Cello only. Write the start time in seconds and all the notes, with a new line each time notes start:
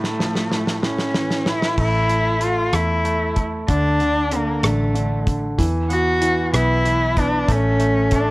Already playing: A3
0.84 C#4
1.48 E4
1.81 E4
2.42 F4
2.74 E4
3.69 D4
4.35 A#3
4.65 A3
5.91 F#4
6.55 E4
7.19 D4
7.51 C#4
8.15 D4